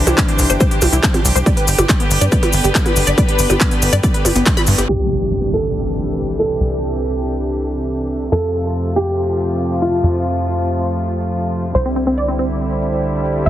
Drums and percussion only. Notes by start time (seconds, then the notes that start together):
0.07 closed hi-hat, percussion blips, cabasa
0.18 kick, clap, closed hi-hat, cabasa
0.28 closed hi-hat
0.39 open hi-hat, cabasa
0.50 closed hi-hat, cabasa
0.60 kick, closed hi-hat, cabasa
0.71 closed hi-hat
0.81 open hi-hat, percussion blips, cabasa
0.93 closed hi-hat, cabasa
1.03 kick, clap, closed hi-hat, cabasa
1.14 closed hi-hat, percussion blips
1.25 open hi-hat, cabasa
1.36 closed hi-hat, cabasa
1.46 kick, closed hi-hat, cabasa
1.57 closed hi-hat
1.68 open hi-hat, cabasa
1.78 closed hi-hat, percussion blips, cabasa
1.89 kick, clap, closed hi-hat, cabasa
2.00 closed hi-hat
2.11 open hi-hat, cabasa
2.21 closed hi-hat, cabasa
2.32 kick, closed hi-hat, cabasa
2.43 closed hi-hat, percussion blips
2.53 open hi-hat, cabasa
2.64 closed hi-hat, cabasa
2.75 kick, clap, closed hi-hat, cabasa
2.86 closed hi-hat, percussion blips
2.96 open hi-hat, cabasa
3.07 closed hi-hat, cabasa
3.18 kick, closed hi-hat, cabasa
3.29 closed hi-hat
3.39 open hi-hat, cabasa
3.50 closed hi-hat, percussion blips, cabasa
3.61 kick, clap, closed hi-hat, cabasa
3.71 closed hi-hat
3.82 open hi-hat, cabasa
3.93 closed hi-hat, cabasa
4.03 kick, closed hi-hat, cabasa
4.14 closed hi-hat
4.25 open hi-hat, percussion blips, cabasa
4.35 closed hi-hat, cabasa
4.46 kick, clap, closed hi-hat, cabasa
4.57 closed hi-hat, percussion blips
4.67 open hi-hat, cabasa
4.78 closed hi-hat, cabasa
11.75 cabasa
11.96 cabasa
12.08 cabasa
12.18 cabasa
12.39 cabasa
12.50 cabasa
12.61 cabasa
12.82 cabasa
12.92 cabasa
13.03 cabasa
13.25 cabasa
13.35 cabasa
13.45 cabasa